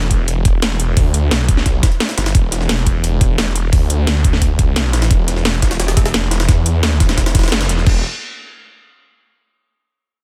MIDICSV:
0, 0, Header, 1, 3, 480
1, 0, Start_track
1, 0, Key_signature, 1, "minor"
1, 0, Tempo, 344828
1, 1349, Time_signature, 4, 2, 24, 8
1, 14253, End_track
2, 0, Start_track
2, 0, Title_t, "Detuned saw bass"
2, 0, Program_c, 0, 39
2, 147, Note_on_c, 0, 28, 101
2, 1329, Note_off_c, 0, 28, 0
2, 1348, Note_on_c, 0, 38, 97
2, 1809, Note_off_c, 0, 38, 0
2, 1828, Note_on_c, 0, 35, 99
2, 2529, Note_off_c, 0, 35, 0
2, 3028, Note_on_c, 0, 31, 98
2, 3249, Note_off_c, 0, 31, 0
2, 3268, Note_on_c, 0, 28, 94
2, 3969, Note_off_c, 0, 28, 0
2, 3989, Note_on_c, 0, 28, 99
2, 5169, Note_off_c, 0, 28, 0
2, 5189, Note_on_c, 0, 38, 98
2, 6567, Note_off_c, 0, 38, 0
2, 6567, Note_on_c, 0, 36, 98
2, 6873, Note_off_c, 0, 36, 0
2, 6873, Note_on_c, 0, 34, 98
2, 7089, Note_off_c, 0, 34, 0
2, 7108, Note_on_c, 0, 28, 94
2, 7809, Note_off_c, 0, 28, 0
2, 7828, Note_on_c, 0, 28, 101
2, 9009, Note_off_c, 0, 28, 0
2, 9028, Note_on_c, 0, 40, 97
2, 9729, Note_off_c, 0, 40, 0
2, 9749, Note_on_c, 0, 28, 103
2, 10449, Note_off_c, 0, 28, 0
2, 10468, Note_on_c, 0, 30, 100
2, 10689, Note_off_c, 0, 30, 0
2, 10708, Note_on_c, 0, 28, 101
2, 10929, Note_off_c, 0, 28, 0
2, 10949, Note_on_c, 0, 28, 98
2, 11172, Note_off_c, 0, 28, 0
2, 14253, End_track
3, 0, Start_track
3, 0, Title_t, "Drums"
3, 29, Note_on_c, 9, 42, 41
3, 148, Note_on_c, 9, 36, 65
3, 149, Note_off_c, 9, 42, 0
3, 149, Note_on_c, 9, 42, 67
3, 150, Note_off_c, 9, 42, 0
3, 150, Note_on_c, 9, 42, 98
3, 287, Note_off_c, 9, 36, 0
3, 289, Note_off_c, 9, 42, 0
3, 388, Note_on_c, 9, 42, 89
3, 390, Note_off_c, 9, 42, 0
3, 390, Note_on_c, 9, 42, 78
3, 529, Note_off_c, 9, 42, 0
3, 628, Note_on_c, 9, 36, 110
3, 628, Note_on_c, 9, 42, 70
3, 629, Note_off_c, 9, 42, 0
3, 629, Note_on_c, 9, 42, 93
3, 767, Note_off_c, 9, 36, 0
3, 768, Note_off_c, 9, 42, 0
3, 868, Note_on_c, 9, 38, 117
3, 868, Note_on_c, 9, 42, 88
3, 869, Note_off_c, 9, 38, 0
3, 869, Note_off_c, 9, 42, 0
3, 869, Note_on_c, 9, 38, 127
3, 869, Note_on_c, 9, 42, 90
3, 1008, Note_off_c, 9, 38, 0
3, 1008, Note_off_c, 9, 42, 0
3, 1108, Note_on_c, 9, 42, 68
3, 1109, Note_off_c, 9, 42, 0
3, 1109, Note_on_c, 9, 42, 92
3, 1248, Note_off_c, 9, 42, 0
3, 1347, Note_on_c, 9, 46, 83
3, 1348, Note_on_c, 9, 36, 126
3, 1348, Note_on_c, 9, 42, 84
3, 1487, Note_off_c, 9, 36, 0
3, 1487, Note_off_c, 9, 42, 0
3, 1487, Note_off_c, 9, 46, 0
3, 1588, Note_on_c, 9, 42, 97
3, 1727, Note_off_c, 9, 42, 0
3, 1828, Note_on_c, 9, 38, 124
3, 1828, Note_on_c, 9, 42, 90
3, 1829, Note_off_c, 9, 38, 0
3, 1829, Note_off_c, 9, 42, 0
3, 1829, Note_on_c, 9, 38, 127
3, 1829, Note_on_c, 9, 42, 81
3, 1968, Note_off_c, 9, 38, 0
3, 1968, Note_off_c, 9, 42, 0
3, 2068, Note_on_c, 9, 36, 119
3, 2068, Note_on_c, 9, 42, 96
3, 2189, Note_on_c, 9, 38, 39
3, 2207, Note_off_c, 9, 36, 0
3, 2208, Note_off_c, 9, 42, 0
3, 2308, Note_off_c, 9, 38, 0
3, 2308, Note_on_c, 9, 36, 64
3, 2308, Note_on_c, 9, 38, 49
3, 2308, Note_on_c, 9, 42, 62
3, 2309, Note_off_c, 9, 42, 0
3, 2309, Note_on_c, 9, 42, 74
3, 2447, Note_off_c, 9, 36, 0
3, 2448, Note_off_c, 9, 38, 0
3, 2448, Note_off_c, 9, 42, 0
3, 2548, Note_on_c, 9, 36, 111
3, 2548, Note_on_c, 9, 38, 108
3, 2548, Note_on_c, 9, 42, 81
3, 2549, Note_off_c, 9, 42, 0
3, 2549, Note_on_c, 9, 42, 94
3, 2669, Note_off_c, 9, 42, 0
3, 2669, Note_on_c, 9, 42, 42
3, 2688, Note_off_c, 9, 36, 0
3, 2688, Note_off_c, 9, 38, 0
3, 2788, Note_off_c, 9, 42, 0
3, 2788, Note_on_c, 9, 42, 60
3, 2790, Note_off_c, 9, 42, 0
3, 2790, Note_on_c, 9, 38, 127
3, 2790, Note_on_c, 9, 42, 85
3, 2908, Note_off_c, 9, 38, 0
3, 2908, Note_off_c, 9, 42, 0
3, 2908, Note_on_c, 9, 38, 102
3, 2908, Note_on_c, 9, 42, 83
3, 3029, Note_off_c, 9, 38, 0
3, 3029, Note_off_c, 9, 42, 0
3, 3029, Note_on_c, 9, 38, 111
3, 3029, Note_on_c, 9, 42, 79
3, 3030, Note_off_c, 9, 42, 0
3, 3030, Note_on_c, 9, 42, 94
3, 3148, Note_off_c, 9, 38, 0
3, 3148, Note_off_c, 9, 42, 0
3, 3148, Note_on_c, 9, 38, 104
3, 3148, Note_on_c, 9, 42, 82
3, 3269, Note_off_c, 9, 42, 0
3, 3269, Note_on_c, 9, 36, 124
3, 3269, Note_on_c, 9, 42, 84
3, 3270, Note_off_c, 9, 42, 0
3, 3270, Note_on_c, 9, 42, 79
3, 3288, Note_off_c, 9, 38, 0
3, 3408, Note_off_c, 9, 36, 0
3, 3409, Note_off_c, 9, 42, 0
3, 3509, Note_on_c, 9, 38, 54
3, 3509, Note_on_c, 9, 42, 95
3, 3629, Note_off_c, 9, 38, 0
3, 3629, Note_on_c, 9, 38, 45
3, 3649, Note_off_c, 9, 42, 0
3, 3748, Note_off_c, 9, 38, 0
3, 3748, Note_on_c, 9, 38, 127
3, 3748, Note_on_c, 9, 42, 90
3, 3749, Note_off_c, 9, 38, 0
3, 3749, Note_off_c, 9, 42, 0
3, 3749, Note_on_c, 9, 38, 121
3, 3749, Note_on_c, 9, 42, 79
3, 3868, Note_off_c, 9, 42, 0
3, 3868, Note_on_c, 9, 42, 44
3, 3889, Note_off_c, 9, 38, 0
3, 3988, Note_off_c, 9, 42, 0
3, 3988, Note_on_c, 9, 42, 72
3, 3989, Note_off_c, 9, 42, 0
3, 3989, Note_on_c, 9, 36, 62
3, 3989, Note_on_c, 9, 42, 95
3, 4128, Note_off_c, 9, 36, 0
3, 4129, Note_off_c, 9, 42, 0
3, 4229, Note_on_c, 9, 42, 71
3, 4368, Note_off_c, 9, 42, 0
3, 4469, Note_on_c, 9, 36, 112
3, 4469, Note_on_c, 9, 42, 90
3, 4608, Note_off_c, 9, 36, 0
3, 4609, Note_off_c, 9, 42, 0
3, 4709, Note_on_c, 9, 38, 115
3, 4709, Note_on_c, 9, 42, 89
3, 4710, Note_off_c, 9, 38, 0
3, 4710, Note_off_c, 9, 42, 0
3, 4710, Note_on_c, 9, 38, 127
3, 4710, Note_on_c, 9, 42, 76
3, 4849, Note_off_c, 9, 38, 0
3, 4849, Note_off_c, 9, 42, 0
3, 4949, Note_on_c, 9, 42, 70
3, 4950, Note_off_c, 9, 42, 0
3, 4950, Note_on_c, 9, 42, 88
3, 5089, Note_off_c, 9, 42, 0
3, 5189, Note_on_c, 9, 36, 118
3, 5189, Note_on_c, 9, 46, 81
3, 5190, Note_on_c, 9, 42, 78
3, 5328, Note_off_c, 9, 36, 0
3, 5328, Note_off_c, 9, 46, 0
3, 5329, Note_off_c, 9, 42, 0
3, 5428, Note_on_c, 9, 42, 69
3, 5430, Note_off_c, 9, 42, 0
3, 5430, Note_on_c, 9, 42, 89
3, 5569, Note_off_c, 9, 42, 0
3, 5668, Note_on_c, 9, 38, 127
3, 5668, Note_on_c, 9, 42, 96
3, 5669, Note_off_c, 9, 38, 0
3, 5669, Note_off_c, 9, 42, 0
3, 5669, Note_on_c, 9, 38, 119
3, 5669, Note_on_c, 9, 42, 77
3, 5808, Note_off_c, 9, 38, 0
3, 5808, Note_off_c, 9, 42, 0
3, 5908, Note_on_c, 9, 36, 104
3, 5908, Note_on_c, 9, 42, 71
3, 5910, Note_off_c, 9, 42, 0
3, 5910, Note_on_c, 9, 42, 93
3, 6030, Note_on_c, 9, 38, 38
3, 6048, Note_off_c, 9, 36, 0
3, 6049, Note_off_c, 9, 42, 0
3, 6148, Note_on_c, 9, 36, 61
3, 6148, Note_on_c, 9, 42, 87
3, 6149, Note_off_c, 9, 42, 0
3, 6149, Note_on_c, 9, 42, 75
3, 6169, Note_off_c, 9, 38, 0
3, 6288, Note_off_c, 9, 36, 0
3, 6288, Note_off_c, 9, 42, 0
3, 6388, Note_on_c, 9, 36, 105
3, 6388, Note_on_c, 9, 42, 67
3, 6389, Note_off_c, 9, 42, 0
3, 6389, Note_on_c, 9, 42, 88
3, 6527, Note_off_c, 9, 36, 0
3, 6528, Note_off_c, 9, 42, 0
3, 6628, Note_on_c, 9, 38, 113
3, 6628, Note_on_c, 9, 42, 87
3, 6630, Note_off_c, 9, 38, 0
3, 6630, Note_off_c, 9, 42, 0
3, 6630, Note_on_c, 9, 38, 122
3, 6630, Note_on_c, 9, 42, 77
3, 6769, Note_off_c, 9, 38, 0
3, 6769, Note_off_c, 9, 42, 0
3, 6867, Note_on_c, 9, 38, 105
3, 6867, Note_on_c, 9, 42, 83
3, 6869, Note_off_c, 9, 42, 0
3, 6869, Note_on_c, 9, 42, 86
3, 6988, Note_off_c, 9, 38, 0
3, 6988, Note_off_c, 9, 42, 0
3, 6988, Note_on_c, 9, 38, 107
3, 6988, Note_on_c, 9, 42, 80
3, 7108, Note_off_c, 9, 42, 0
3, 7108, Note_on_c, 9, 36, 114
3, 7108, Note_on_c, 9, 42, 84
3, 7110, Note_off_c, 9, 42, 0
3, 7110, Note_on_c, 9, 42, 82
3, 7127, Note_off_c, 9, 38, 0
3, 7247, Note_off_c, 9, 36, 0
3, 7249, Note_off_c, 9, 42, 0
3, 7349, Note_on_c, 9, 38, 52
3, 7349, Note_on_c, 9, 42, 96
3, 7469, Note_off_c, 9, 38, 0
3, 7469, Note_on_c, 9, 38, 48
3, 7488, Note_off_c, 9, 42, 0
3, 7588, Note_off_c, 9, 38, 0
3, 7588, Note_on_c, 9, 38, 126
3, 7588, Note_on_c, 9, 42, 96
3, 7590, Note_off_c, 9, 38, 0
3, 7590, Note_off_c, 9, 42, 0
3, 7590, Note_on_c, 9, 38, 124
3, 7590, Note_on_c, 9, 42, 80
3, 7708, Note_off_c, 9, 42, 0
3, 7708, Note_on_c, 9, 42, 43
3, 7729, Note_off_c, 9, 38, 0
3, 7828, Note_off_c, 9, 42, 0
3, 7828, Note_on_c, 9, 36, 63
3, 7828, Note_on_c, 9, 38, 106
3, 7828, Note_on_c, 9, 42, 75
3, 7829, Note_off_c, 9, 42, 0
3, 7829, Note_on_c, 9, 42, 98
3, 7947, Note_off_c, 9, 38, 0
3, 7947, Note_off_c, 9, 42, 0
3, 7947, Note_on_c, 9, 38, 109
3, 7947, Note_on_c, 9, 42, 83
3, 7968, Note_off_c, 9, 36, 0
3, 8068, Note_off_c, 9, 38, 0
3, 8068, Note_off_c, 9, 42, 0
3, 8068, Note_on_c, 9, 38, 104
3, 8068, Note_on_c, 9, 42, 78
3, 8069, Note_off_c, 9, 42, 0
3, 8069, Note_on_c, 9, 42, 73
3, 8188, Note_off_c, 9, 38, 0
3, 8188, Note_off_c, 9, 42, 0
3, 8188, Note_on_c, 9, 38, 114
3, 8188, Note_on_c, 9, 42, 86
3, 8308, Note_on_c, 9, 36, 105
3, 8309, Note_off_c, 9, 38, 0
3, 8309, Note_off_c, 9, 42, 0
3, 8309, Note_on_c, 9, 38, 107
3, 8309, Note_on_c, 9, 42, 96
3, 8429, Note_off_c, 9, 38, 0
3, 8429, Note_off_c, 9, 42, 0
3, 8429, Note_on_c, 9, 38, 112
3, 8429, Note_on_c, 9, 42, 84
3, 8447, Note_off_c, 9, 36, 0
3, 8548, Note_off_c, 9, 38, 0
3, 8548, Note_off_c, 9, 42, 0
3, 8548, Note_on_c, 9, 38, 113
3, 8548, Note_on_c, 9, 42, 89
3, 8549, Note_off_c, 9, 38, 0
3, 8549, Note_off_c, 9, 42, 0
3, 8549, Note_on_c, 9, 38, 116
3, 8549, Note_on_c, 9, 42, 81
3, 8688, Note_off_c, 9, 38, 0
3, 8688, Note_off_c, 9, 42, 0
3, 8788, Note_on_c, 9, 38, 112
3, 8788, Note_on_c, 9, 42, 78
3, 8789, Note_off_c, 9, 42, 0
3, 8789, Note_on_c, 9, 42, 91
3, 8908, Note_off_c, 9, 38, 0
3, 8908, Note_off_c, 9, 42, 0
3, 8908, Note_on_c, 9, 38, 111
3, 8908, Note_on_c, 9, 42, 78
3, 9028, Note_off_c, 9, 38, 0
3, 9028, Note_off_c, 9, 42, 0
3, 9028, Note_on_c, 9, 38, 105
3, 9028, Note_on_c, 9, 42, 78
3, 9029, Note_off_c, 9, 42, 0
3, 9029, Note_on_c, 9, 36, 119
3, 9029, Note_on_c, 9, 42, 87
3, 9167, Note_off_c, 9, 38, 0
3, 9168, Note_off_c, 9, 36, 0
3, 9169, Note_off_c, 9, 42, 0
3, 9268, Note_on_c, 9, 42, 68
3, 9270, Note_off_c, 9, 42, 0
3, 9270, Note_on_c, 9, 42, 95
3, 9409, Note_off_c, 9, 42, 0
3, 9507, Note_on_c, 9, 38, 127
3, 9507, Note_on_c, 9, 42, 94
3, 9510, Note_off_c, 9, 38, 0
3, 9510, Note_off_c, 9, 42, 0
3, 9510, Note_on_c, 9, 38, 119
3, 9510, Note_on_c, 9, 42, 82
3, 9649, Note_off_c, 9, 38, 0
3, 9649, Note_off_c, 9, 42, 0
3, 9748, Note_on_c, 9, 38, 103
3, 9748, Note_on_c, 9, 42, 78
3, 9749, Note_on_c, 9, 36, 107
3, 9750, Note_off_c, 9, 42, 0
3, 9750, Note_on_c, 9, 42, 93
3, 9869, Note_off_c, 9, 38, 0
3, 9869, Note_off_c, 9, 42, 0
3, 9869, Note_on_c, 9, 38, 104
3, 9869, Note_on_c, 9, 42, 79
3, 9870, Note_off_c, 9, 38, 0
3, 9870, Note_on_c, 9, 38, 36
3, 9888, Note_off_c, 9, 36, 0
3, 9989, Note_off_c, 9, 38, 0
3, 9989, Note_off_c, 9, 42, 0
3, 9989, Note_on_c, 9, 36, 59
3, 9989, Note_on_c, 9, 38, 106
3, 9989, Note_on_c, 9, 42, 82
3, 9990, Note_off_c, 9, 42, 0
3, 9990, Note_on_c, 9, 42, 77
3, 10110, Note_off_c, 9, 38, 0
3, 10110, Note_off_c, 9, 42, 0
3, 10110, Note_on_c, 9, 38, 116
3, 10110, Note_on_c, 9, 42, 85
3, 10128, Note_off_c, 9, 36, 0
3, 10229, Note_off_c, 9, 38, 0
3, 10229, Note_off_c, 9, 42, 0
3, 10229, Note_on_c, 9, 36, 105
3, 10229, Note_on_c, 9, 38, 88
3, 10229, Note_on_c, 9, 42, 64
3, 10230, Note_off_c, 9, 42, 0
3, 10230, Note_on_c, 9, 42, 95
3, 10289, Note_off_c, 9, 38, 0
3, 10289, Note_off_c, 9, 42, 0
3, 10289, Note_on_c, 9, 38, 83
3, 10289, Note_on_c, 9, 42, 68
3, 10349, Note_off_c, 9, 38, 0
3, 10349, Note_off_c, 9, 42, 0
3, 10349, Note_on_c, 9, 38, 96
3, 10349, Note_on_c, 9, 42, 71
3, 10368, Note_off_c, 9, 36, 0
3, 10409, Note_off_c, 9, 38, 0
3, 10409, Note_off_c, 9, 42, 0
3, 10409, Note_on_c, 9, 38, 98
3, 10409, Note_on_c, 9, 42, 68
3, 10469, Note_off_c, 9, 38, 0
3, 10469, Note_off_c, 9, 42, 0
3, 10469, Note_on_c, 9, 38, 119
3, 10469, Note_on_c, 9, 42, 87
3, 10589, Note_off_c, 9, 38, 0
3, 10589, Note_off_c, 9, 42, 0
3, 10589, Note_on_c, 9, 38, 104
3, 10589, Note_on_c, 9, 42, 82
3, 10709, Note_off_c, 9, 38, 0
3, 10709, Note_off_c, 9, 42, 0
3, 10709, Note_on_c, 9, 38, 50
3, 10709, Note_on_c, 9, 42, 91
3, 10828, Note_off_c, 9, 38, 0
3, 10828, Note_on_c, 9, 38, 40
3, 10848, Note_off_c, 9, 42, 0
3, 10949, Note_on_c, 9, 36, 123
3, 10950, Note_on_c, 9, 49, 86
3, 10967, Note_off_c, 9, 38, 0
3, 11088, Note_off_c, 9, 36, 0
3, 11089, Note_off_c, 9, 49, 0
3, 14253, End_track
0, 0, End_of_file